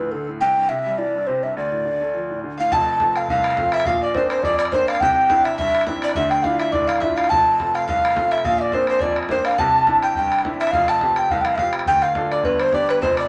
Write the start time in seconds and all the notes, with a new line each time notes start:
Already playing: D2 B4
0.00 A2
0.12 D3 A4
0.29 A2
0.41 C2 G5
0.58 G2
0.69 C3 E5
0.86 G3
0.98 E3 D5
1.15 G2
1.27 C3 C5
1.43 G2 E5
1.57 D2 D5
1.72 A2
1.85 D3
2.01 A3
2.14 F3
2.30 A2
2.44 D3
2.57 A2 F5
2.72 F1 F2 A5, bodhran
3.00 F3 A3 C4, bodhran
3.08 bodhran
3.16 F5, bodhran
3.28 C2 F5, bodhran
3.44 bodhran
3.50 bodhran
3.57 F3 A3 C4, bodhran
3.65 bodhran
3.72 E5, bodhran
3.80 bodhran
3.85 A#1 A#2 F5, bodhran
4.02 D5
4.14 A#3 C4 D4 C5, bodhran
4.22 bodhran
4.30 C5, bodhran
4.42 F2 D5, bodhran
4.59 D5, bodhran
4.65 bodhran
4.72 A#3 C4 D4 C5, bodhran
4.80 bodhran
4.88 F5, bodhran
4.95 bodhran
5.00 C2 C3 G5, bodhran
5.30 C4 D4 E4 F5, bodhran
5.38 bodhran
5.44 E5, bodhran
5.58 G2 E5, bodhran
5.75 bodhran
5.81 bodhran
5.86 C4 D4 E4 E5, bodhran
5.95 bodhran
6.02 D5, bodhran
6.09 bodhran
6.15 D2 D3 E5, bodhran
6.30 G5, bodhran
6.43 D4 E4 F4 F5, bodhran
6.52 bodhran
6.59 E5, bodhran
6.72 A2 D5, bodhran
6.87 F5, bodhran
6.96 bodhran
7.00 D4 E4 F4 E5, bodhran
7.10 bodhran
7.16 F5, bodhran
7.24 bodhran
7.29 F1 F2 A5, bodhran
7.60 A3 C4 F4, bodhran
7.68 bodhran
7.75 F5, bodhran
7.87 C2 F5, bodhran
8.05 bodhran
8.10 bodhran
8.16 A3 C4 F4, bodhran
8.24 bodhran
8.31 E5, bodhran
8.38 bodhran
8.44 A#1 A#2 F5, bodhran
8.58 D5 E5
8.72 A#3 C4 D4 C5, bodhran
8.80 bodhran
8.87 C5, bodhran
8.99 F2 D5 E5, bodhran
9.16 bodhran
9.23 bodhran
9.29 A#3 C4 D4 C5, bodhran
9.37 bodhran
9.45 F5, bodhran
9.51 bodhran
9.58 C2 C3 A5, bodhran
9.87 C4 D4 E4, bodhran
9.94 bodhran
10.03 G5, bodhran
10.15 G2 G5, bodhran
10.32 bodhran
10.39 bodhran
10.45 C4 D4 E4, bodhran
10.53 bodhran
10.60 E5, bodhran
10.67 F5, bodhran
10.73 F1 F2 F5, bodhran
10.88 A5, bodhran
11.01 C4 F4 G4, bodhran
11.10 bodhran
11.16 G5, bodhran
11.30 C2 F5, bodhran
11.41 G5, bodhran
11.45 F5
11.56 E5 F5, bodhran
11.60 C4 F4 G4
11.66 bodhran
11.73 bodhran
11.79 bodhran
11.86 D1 D2 G5, bodhran
12.02 F5, bodhran
12.15 D4 F4 A4, bodhran
12.32 D5, bodhran
12.44 G1 G2 B4, bodhran
12.60 C5, bodhran
12.73 B3 D4 G4 D5, bodhran
12.89 B4, bodhran
13.02 F1 F2 C5, bodhran
13.17 D5, bodhran